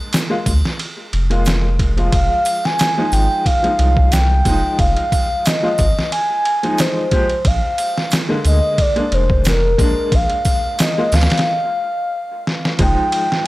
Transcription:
0.00 0.26 G#3 medium
0.00 0.27 A#3 medium
0.00 0.27 D4 loud
0.13 snare loud
0.13 ride medium
0.13 shaker medium
0.30 0.48 G#3 medium
0.30 0.48 A#3 medium
0.30 0.48 F4 medium
0.46 0.62 D2 loud
0.46 kick medium
0.46 ride medium
0.46 triangle medium
0.65 snare medium
0.79 ride medium
1.13 2.10 F1 medium
1.13 ride medium
1.30 1.92 G#3 medium
1.30 1.93 A#3 medium
1.30 1.93 F4 medium
1.30 ride soft
1.46 snare loud
1.46 ride medium
1.46 shaker medium
1.79 kick medium
1.79 ride medium
1.96 2.92 F3 medium
1.96 2.93 G#3 medium
1.96 2.93 F4 medium
1.96 ride soft
2.12 2.28 F1 loud
2.12 2.67 F5 loud
2.12 kick loud
2.12 ride medium
2.45 ride medium
2.45 triangle medium
2.65 3.14 G#5 loud
2.65 snare medium
2.79 snare loud
2.79 ride medium
2.79 shaker medium
2.97 3.59 F3 medium
2.97 3.60 G#3 medium
2.97 3.60 D#4 medium
3.12 3.28 G#1 loud
3.12 3.47 G5 loud
3.12 ride medium
3.12 triangle medium
3.46 4.14 F5 loud
3.46 kick loud
3.46 ride medium
3.62 4.41 F3 medium
3.62 4.42 G#3 medium
3.62 4.43 D#4 medium
3.62 ride soft
3.79 4.42 C2 medium
3.79 ride medium
3.97 kick loud
4.12 4.79 G5 loud
4.12 snare loud
4.12 ride medium
4.12 shaker medium
4.45 4.61 F1 medium
4.45 5.59 F3 medium
4.45 5.59 G#3 medium
4.45 5.60 D#4 loud
4.45 kick medium
4.45 ride medium
4.45 triangle medium
4.79 4.95 F1 loud
4.79 5.48 F5 loud
4.79 kick loud
4.79 ride medium
4.97 ride soft
5.12 kick medium
5.12 ride medium
5.12 triangle medium
5.46 6.12 D#5 loud
5.46 snare loud
5.46 ride medium
5.46 shaker medium
5.63 5.81 F3 medium
5.63 5.81 G#3 medium
5.63 5.81 F4 medium
5.78 5.95 G#1 loud
5.78 kick medium
5.78 ride medium
5.78 triangle medium
5.99 snare medium
6.12 6.81 G#5 loud
6.12 ride medium
6.45 ride medium
6.63 7.08 F3 medium
6.63 7.09 G#3 medium
6.63 7.09 D#4 loud
6.63 ride soft
6.78 7.49 C5 medium
6.78 snare loud
6.78 ride medium
6.78 shaker medium
7.11 7.32 F3 medium
7.11 7.32 G#3 medium
7.11 7.32 G4 medium
7.11 kick medium
7.11 ride medium
7.29 ride soft
7.45 7.61 A#1 loud
7.45 8.13 F5 medium
7.45 kick loud
7.45 ride medium
7.78 ride medium
7.78 triangle medium
7.98 snare medium
8.11 snare loud
8.11 ride medium
8.11 shaker medium
8.29 8.93 D3 medium
8.29 8.92 G#3 medium
8.29 8.92 A#3 medium
8.45 8.61 D2 loud
8.45 8.83 D#5 loud
8.45 ride medium
8.45 triangle medium
8.78 9.15 D5 loud
8.78 kick loud
8.78 ride medium
8.96 9.75 G#3 medium
8.96 9.75 A#3 medium
8.96 9.76 D4 medium
8.96 ride soft
9.12 9.76 F1 medium
9.12 9.46 C5 medium
9.12 ride medium
9.30 kick loud
9.45 10.16 A#4 loud
9.45 snare loud
9.45 ride medium
9.45 shaker medium
9.78 9.94 A#1 medium
9.78 10.92 G#3 medium
9.78 10.92 A#3 medium
9.78 10.93 D4 loud
9.78 kick medium
9.78 ride medium
9.78 triangle medium
10.12 10.28 A#1 loud
10.12 10.80 F5 loud
10.12 kick loud
10.12 ride medium
10.30 ride soft
10.45 kick medium
10.45 ride medium
10.45 triangle medium
10.79 11.16 D#5 loud
10.79 snare loud
10.79 ride medium
10.79 shaker medium
10.98 11.15 G#3 medium
10.98 11.15 A#3 medium
10.98 11.15 F4 medium
11.12 11.28 D2 loud
11.12 12.47 F5 loud
11.12 snare medium
11.12 ride medium
11.12 triangle medium
11.21 snare medium
11.21 ride medium
11.30 snare medium
11.30 ride medium
11.38 snare medium
11.38 ride medium
12.47 snare medium
12.65 snare medium
12.79 12.95 F1 loud
12.79 13.47 F3 loud
12.79 13.47 G#3 medium
12.79 13.47 D#4 medium
12.79 13.47 D#4 loud
12.79 13.47 G5 loud
12.79 kick loud
12.79 ride medium
13.12 ride medium
13.32 snare medium

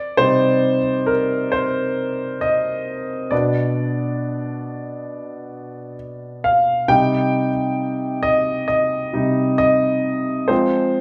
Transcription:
0.00 0.15 D5 medium
0.17 0.78 C3 soft
0.17 0.78 G3 soft
0.17 0.78 D#4 soft
0.17 1.10 C5 medium
1.06 1.53 A#4 medium
1.52 2.38 C5 medium
2.41 3.34 D#5 medium
3.31 6.86 B2 soft
3.31 6.86 B3 soft
3.31 6.86 D4 soft
3.31 5.96 D5 medium
6.44 6.91 F5 medium
6.88 7.49 C3 soft
6.88 7.49 G3 soft
6.88 7.49 D#4 soft
6.88 8.27 G5 medium
8.23 8.66 D#5 medium
8.68 9.57 D#5 medium
9.13 9.54 C3 soft
9.13 9.54 G3 soft
9.13 9.55 D#4 soft
9.58 10.51 D#5 medium
10.48 11.01 F3 soft
10.48 11.01 G#3 soft
10.48 11.01 C4 medium
10.48 11.01 C5 medium

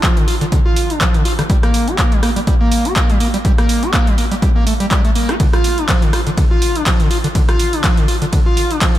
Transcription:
0.03 0.18 F3 medium
0.03 kick loud
0.03 clap loud
0.03 closed hi-hat medium
0.17 0.26 D3 medium
0.17 closed hi-hat soft
0.28 0.35 F4 medium
0.28 open hi-hat medium
0.41 0.45 D3 loud
0.41 closed hi-hat medium
0.52 0.60 D3 medium
0.52 kick loud
0.52 closed hi-hat medium
0.66 0.92 F4 loud
0.76 open hi-hat loud
0.90 0.99 D4 medium
0.90 closed hi-hat medium
1.01 1.16 F3 medium
1.01 kick loud
1.01 clap loud
1.01 closed hi-hat medium
1.14 1.23 D3 medium
1.14 closed hi-hat soft
1.25 1.33 F4 medium
1.25 open hi-hat loud
1.39 1.42 D3 loud
1.39 cross-stick medium
1.39 closed hi-hat medium
1.50 1.57 G3 medium
1.50 kick loud
1.50 closed hi-hat medium
1.63 1.89 A#3 loud
1.63 cross-stick medium
1.63 closed hi-hat soft
1.74 open hi-hat loud
1.87 1.96 G4 medium
1.87 closed hi-hat medium
1.98 2.13 A#3 medium
1.98 kick loud
1.98 clap loud
1.98 closed hi-hat medium
2.12 2.21 G3 medium
2.12 closed hi-hat soft
2.23 2.30 A#3 medium
2.23 cross-stick medium
2.23 open hi-hat loud
2.36 2.40 G3 loud
2.36 closed hi-hat medium
2.47 2.55 G3 medium
2.47 kick loud
2.47 closed hi-hat medium
2.61 2.87 A#3 loud
2.72 open hi-hat loud
2.85 2.94 G4 medium
2.85 closed hi-hat medium
2.96 3.11 A#3 medium
2.96 kick loud
2.96 clap loud
2.96 closed hi-hat medium
3.09 3.18 G3 medium
3.09 closed hi-hat soft
3.20 3.28 A#3 medium
3.20 open hi-hat loud
3.34 3.38 G3 loud
3.34 closed hi-hat medium
3.45 3.52 G3 medium
3.45 kick loud
3.45 closed hi-hat medium
3.58 3.84 A#3 loud
3.58 cross-stick medium
3.58 closed hi-hat soft
3.69 open hi-hat loud
3.83 3.92 G4 medium
3.83 closed hi-hat soft
3.93 4.09 A#3 medium
3.93 kick loud
3.93 clap loud
3.93 closed hi-hat medium
4.07 4.16 G3 medium
4.07 closed hi-hat soft
4.18 4.25 A#3 medium
4.18 open hi-hat loud
4.31 4.35 G3 loud
4.31 closed hi-hat medium
4.42 4.50 G3 medium
4.42 kick loud
4.42 closed hi-hat medium
4.56 4.65 A#3 loud
4.67 4.74 A3 medium
4.67 open hi-hat loud
4.80 4.86 G3 loud
4.80 closed hi-hat medium
4.91 5.02 G3 medium
4.91 kick loud
4.91 clap loud
4.91 closed hi-hat medium
5.05 5.11 A3 medium
5.05 closed hi-hat soft
5.15 5.31 A#3 medium
5.15 open hi-hat loud
5.29 5.35 G4 loud
5.29 cross-stick medium
5.29 closed hi-hat soft
5.40 5.47 D3 medium
5.40 kick loud
5.40 closed hi-hat medium
5.40 ride medium
5.53 5.79 F4 loud
5.53 cross-stick medium
5.53 closed hi-hat soft
5.64 open hi-hat loud
5.78 5.87 D4 medium
5.78 closed hi-hat soft
5.89 6.04 F3 medium
5.89 kick loud
5.89 clap loud
5.89 closed hi-hat medium
5.89 ride medium
6.02 6.11 D3 medium
6.02 closed hi-hat soft
6.13 6.21 F4 medium
6.13 cross-stick medium
6.13 open hi-hat medium
6.27 6.30 D3 loud
6.27 closed hi-hat medium
6.37 6.45 D3 medium
6.37 kick loud
6.37 closed hi-hat medium
6.37 ride medium
6.51 6.77 F4 loud
6.62 open hi-hat loud
6.75 6.84 D4 medium
6.75 closed hi-hat medium
6.86 7.01 F3 medium
6.86 kick loud
6.86 clap loud
6.86 closed hi-hat medium
6.86 ride medium
7.00 7.09 D3 medium
7.00 closed hi-hat soft
7.11 7.18 F4 medium
7.11 open hi-hat loud
7.24 7.28 D3 loud
7.24 closed hi-hat medium
7.35 7.42 D3 medium
7.35 kick loud
7.35 closed hi-hat medium
7.35 ride medium
7.49 7.74 F4 loud
7.49 cross-stick medium
7.49 closed hi-hat soft
7.59 open hi-hat loud
7.73 7.82 D4 medium
7.73 closed hi-hat medium
7.84 7.99 F3 medium
7.84 kick loud
7.84 clap loud
7.84 closed hi-hat medium
7.84 ride medium
7.97 8.06 D3 medium
7.97 closed hi-hat soft
8.08 8.16 F4 medium
8.08 open hi-hat medium
8.22 8.25 D3 loud
8.22 closed hi-hat medium
8.33 8.40 D3 medium
8.33 kick loud
8.33 closed hi-hat medium
8.33 ride medium
8.46 8.72 F4 loud
8.57 open hi-hat loud
8.71 8.80 D4 medium
8.71 closed hi-hat medium
8.81 8.97 F3 medium
8.81 kick loud
8.81 clap loud
8.81 closed hi-hat medium
8.81 ride medium
8.95 8.99 D3 medium
8.95 closed hi-hat soft

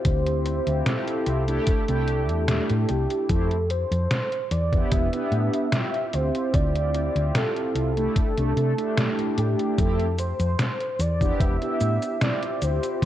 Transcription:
0.00 1.42 C4 medium
0.00 1.43 E4 medium
0.00 1.44 F4 medium
0.00 1.44 G4 medium
0.05 0.59 D2 loud
0.05 0.88 C5 loud
0.05 kick loud
0.05 closed hi-hat medium
0.27 closed hi-hat soft
0.46 closed hi-hat medium
0.67 0.82 D2 medium
0.67 closed hi-hat soft
0.86 2.90 A4 loud
0.86 snare loud
0.86 closed hi-hat medium
1.08 closed hi-hat soft
1.27 1.58 C2 medium
1.27 closed hi-hat medium
1.47 1.83 A3 medium
1.47 1.83 D4 medium
1.47 1.84 E4 medium
1.47 1.84 G4 loud
1.47 closed hi-hat soft
1.67 kick loud
1.67 closed hi-hat medium
1.88 2.30 C2 medium
1.88 2.43 A3 medium
1.88 2.44 D4 medium
1.88 2.44 E4 medium
1.88 2.44 G4 loud
1.88 closed hi-hat soft
2.08 closed hi-hat soft
2.29 2.60 E2 medium
2.29 closed hi-hat soft
2.47 3.27 A3 medium
2.47 3.27 D4 medium
2.47 3.27 E4 medium
2.47 3.27 G4 medium
2.47 snare loud
2.47 closed hi-hat medium
2.70 2.85 A2 loud
2.70 closed hi-hat soft
2.89 3.06 C2 medium
2.89 3.31 G4 medium
2.89 closed hi-hat medium
3.10 closed hi-hat soft
3.28 3.83 F2 loud
3.28 3.57 A3 medium
3.28 3.57 C4 medium
3.28 3.57 E4 medium
3.28 3.58 G4 loud
3.28 3.70 A4 loud
3.28 kick loud
3.28 closed hi-hat medium
3.51 closed hi-hat soft
3.70 4.52 C5 loud
3.70 closed hi-hat medium
3.91 4.06 F2 medium
3.91 closed hi-hat soft
4.11 snare loud
4.11 closed hi-hat medium
4.32 closed hi-hat soft
4.51 4.82 E2 medium
4.51 4.93 D5 loud
4.51 closed hi-hat medium
4.72 5.08 B3 medium
4.72 5.08 D4 medium
4.72 5.08 E4 medium
4.72 5.08 G4 loud
4.72 kick loud
4.72 closed hi-hat soft
4.91 5.08 E1 medium
4.91 5.72 E5 loud
4.91 kick loud
4.91 closed hi-hat medium
5.12 5.68 B3 medium
5.12 5.68 D4 medium
5.12 5.68 E4 medium
5.12 5.69 G4 loud
5.12 closed hi-hat soft
5.32 5.48 A2 medium
5.32 closed hi-hat soft
5.54 closed hi-hat soft
5.72 7.91 C4 medium
5.72 7.92 E4 medium
5.72 7.92 F4 medium
5.72 7.93 G4 medium
5.72 6.15 E5 loud
5.72 snare loud
5.72 closed hi-hat medium
5.94 closed hi-hat soft
6.13 6.30 D2 medium
6.13 6.55 C5 loud
6.13 closed hi-hat medium
6.35 closed hi-hat soft
6.54 7.08 D2 medium
6.54 7.37 D5 loud
6.54 kick loud
6.54 closed hi-hat medium
6.76 closed hi-hat soft
6.95 closed hi-hat medium
7.16 7.30 D2 medium
7.16 closed hi-hat soft
7.35 9.40 A4 loud
7.35 snare loud
7.35 closed hi-hat medium
7.56 closed hi-hat soft
7.75 8.06 C2 medium
7.75 closed hi-hat medium
7.96 8.32 A3 medium
7.96 8.32 D4 medium
7.96 8.33 E4 medium
7.96 8.33 G4 loud
7.96 closed hi-hat soft
8.16 kick loud
8.16 closed hi-hat medium
8.37 8.52 C2 medium
8.37 8.53 A3 medium
8.37 8.53 D4 medium
8.37 8.53 E4 medium
8.37 8.53 G4 loud
8.37 closed hi-hat soft
8.56 8.73 C3 medium
8.56 8.72 A3 medium
8.56 8.73 D4 medium
8.56 8.73 E4 medium
8.56 8.73 A4 loud
8.56 closed hi-hat soft
8.76 9.75 A3 loud
8.76 9.76 D4 medium
8.76 9.76 E4 medium
8.76 9.77 G4 loud
8.76 closed hi-hat soft
8.97 snare loud
8.97 closed hi-hat medium
9.19 closed hi-hat soft
9.37 9.54 A2 medium
9.37 9.80 G4 medium
9.37 closed hi-hat medium
9.59 closed hi-hat soft
9.77 10.32 F2 medium
9.77 10.06 A3 medium
9.77 10.06 C4 medium
9.77 10.06 E4 medium
9.77 10.06 G4 loud
9.77 10.18 A4 loud
9.77 kick loud
9.77 closed hi-hat medium
9.77 cabasa soft
9.99 closed hi-hat soft
10.18 11.02 C5 loud
10.18 closed hi-hat medium
10.18 cabasa medium
10.40 10.54 F2 medium
10.40 closed hi-hat soft
10.40 cabasa soft
10.59 snare loud
10.59 closed hi-hat medium
10.59 cabasa soft
10.81 closed hi-hat soft
10.99 11.31 E2 medium
10.99 11.40 D5 loud
10.99 closed hi-hat medium
10.99 cabasa medium
11.20 11.56 B3 medium
11.20 11.56 D4 medium
11.20 11.57 E4 medium
11.20 11.57 G4 loud
11.20 kick loud
11.20 closed hi-hat soft
11.20 cabasa soft
11.40 11.56 E1 medium
11.40 12.23 E5 loud
11.40 kick loud
11.40 closed hi-hat medium
11.40 cabasa soft
11.61 12.16 B3 medium
11.61 12.17 D4 medium
11.61 12.17 E4 medium
11.61 12.17 G4 loud
11.61 closed hi-hat soft
11.81 11.97 A2 medium
11.81 closed hi-hat soft
11.81 cabasa medium
12.02 closed hi-hat soft
12.02 cabasa soft
12.20 13.05 C4 medium
12.20 13.05 E4 medium
12.20 13.05 F4 medium
12.20 13.05 G4 medium
12.20 12.64 D5 loud
12.20 snare loud
12.20 closed hi-hat medium
12.20 cabasa soft
12.43 closed hi-hat soft
12.62 12.78 D2 medium
12.62 13.02 C5 medium
12.62 closed hi-hat medium
12.62 cabasa medium
12.83 closed hi-hat soft
12.83 cabasa soft

